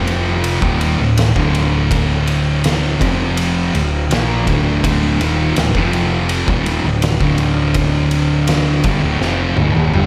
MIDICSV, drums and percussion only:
0, 0, Header, 1, 2, 480
1, 0, Start_track
1, 0, Key_signature, -1, "minor"
1, 0, Tempo, 729927
1, 1259, Time_signature, 4, 2, 24, 8
1, 6617, End_track
2, 0, Start_track
2, 0, Title_t, "Drums"
2, 49, Note_on_c, 9, 51, 66
2, 115, Note_off_c, 9, 51, 0
2, 289, Note_on_c, 9, 51, 89
2, 355, Note_off_c, 9, 51, 0
2, 409, Note_on_c, 9, 36, 106
2, 475, Note_off_c, 9, 36, 0
2, 532, Note_on_c, 9, 51, 72
2, 598, Note_off_c, 9, 51, 0
2, 773, Note_on_c, 9, 51, 95
2, 783, Note_on_c, 9, 38, 111
2, 839, Note_off_c, 9, 51, 0
2, 848, Note_off_c, 9, 38, 0
2, 894, Note_on_c, 9, 36, 98
2, 959, Note_off_c, 9, 36, 0
2, 1018, Note_on_c, 9, 51, 67
2, 1083, Note_off_c, 9, 51, 0
2, 1255, Note_on_c, 9, 36, 108
2, 1258, Note_on_c, 9, 51, 95
2, 1321, Note_off_c, 9, 36, 0
2, 1324, Note_off_c, 9, 51, 0
2, 1496, Note_on_c, 9, 51, 74
2, 1562, Note_off_c, 9, 51, 0
2, 1737, Note_on_c, 9, 51, 92
2, 1747, Note_on_c, 9, 38, 105
2, 1802, Note_off_c, 9, 51, 0
2, 1812, Note_off_c, 9, 38, 0
2, 1979, Note_on_c, 9, 36, 102
2, 1983, Note_on_c, 9, 51, 69
2, 2045, Note_off_c, 9, 36, 0
2, 2048, Note_off_c, 9, 51, 0
2, 2218, Note_on_c, 9, 51, 94
2, 2284, Note_off_c, 9, 51, 0
2, 2464, Note_on_c, 9, 51, 68
2, 2530, Note_off_c, 9, 51, 0
2, 2702, Note_on_c, 9, 51, 89
2, 2712, Note_on_c, 9, 38, 112
2, 2768, Note_off_c, 9, 51, 0
2, 2778, Note_off_c, 9, 38, 0
2, 2941, Note_on_c, 9, 36, 94
2, 2942, Note_on_c, 9, 51, 64
2, 3007, Note_off_c, 9, 36, 0
2, 3008, Note_off_c, 9, 51, 0
2, 3183, Note_on_c, 9, 36, 107
2, 3185, Note_on_c, 9, 51, 90
2, 3248, Note_off_c, 9, 36, 0
2, 3251, Note_off_c, 9, 51, 0
2, 3424, Note_on_c, 9, 51, 68
2, 3490, Note_off_c, 9, 51, 0
2, 3659, Note_on_c, 9, 51, 88
2, 3669, Note_on_c, 9, 38, 108
2, 3724, Note_off_c, 9, 51, 0
2, 3734, Note_off_c, 9, 38, 0
2, 3780, Note_on_c, 9, 36, 99
2, 3846, Note_off_c, 9, 36, 0
2, 3901, Note_on_c, 9, 51, 66
2, 3967, Note_off_c, 9, 51, 0
2, 4138, Note_on_c, 9, 51, 87
2, 4204, Note_off_c, 9, 51, 0
2, 4261, Note_on_c, 9, 36, 107
2, 4326, Note_off_c, 9, 36, 0
2, 4381, Note_on_c, 9, 51, 67
2, 4446, Note_off_c, 9, 51, 0
2, 4617, Note_on_c, 9, 51, 92
2, 4627, Note_on_c, 9, 38, 118
2, 4683, Note_off_c, 9, 51, 0
2, 4693, Note_off_c, 9, 38, 0
2, 4738, Note_on_c, 9, 36, 99
2, 4804, Note_off_c, 9, 36, 0
2, 4852, Note_on_c, 9, 51, 71
2, 4918, Note_off_c, 9, 51, 0
2, 5092, Note_on_c, 9, 51, 93
2, 5097, Note_on_c, 9, 36, 106
2, 5158, Note_off_c, 9, 51, 0
2, 5163, Note_off_c, 9, 36, 0
2, 5333, Note_on_c, 9, 51, 73
2, 5399, Note_off_c, 9, 51, 0
2, 5573, Note_on_c, 9, 51, 95
2, 5583, Note_on_c, 9, 38, 104
2, 5639, Note_off_c, 9, 51, 0
2, 5649, Note_off_c, 9, 38, 0
2, 5811, Note_on_c, 9, 51, 70
2, 5815, Note_on_c, 9, 36, 106
2, 5877, Note_off_c, 9, 51, 0
2, 5881, Note_off_c, 9, 36, 0
2, 6060, Note_on_c, 9, 38, 60
2, 6126, Note_off_c, 9, 38, 0
2, 6291, Note_on_c, 9, 48, 72
2, 6357, Note_off_c, 9, 48, 0
2, 6412, Note_on_c, 9, 48, 63
2, 6478, Note_off_c, 9, 48, 0
2, 6534, Note_on_c, 9, 47, 88
2, 6599, Note_off_c, 9, 47, 0
2, 6617, End_track
0, 0, End_of_file